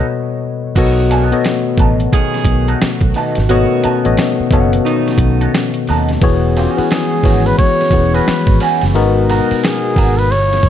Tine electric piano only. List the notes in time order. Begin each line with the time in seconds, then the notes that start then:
Already playing: B2 B3 A4 C#5 D#5
0.77 B2 B3 A4 C#5 D#5
1.32 B2 B3 A4 C#5 D#5
3.50 B2 B3 A4 C#5 D#5
4.04 B2 B3 A4 C#5 D#5
4.52 B2 B3 A4 C#5 F5
4.60 F#5
6.22 E3 B3 F#4 G#4 C#5
6.77 E3 B3 F#4 G#4 B4
7.24 E3 B3 F#4 G#4 C#5
7.93 E3 B3 F#4 G#4 C#5
8.95 G#3 B3 D#4 F#4 A#4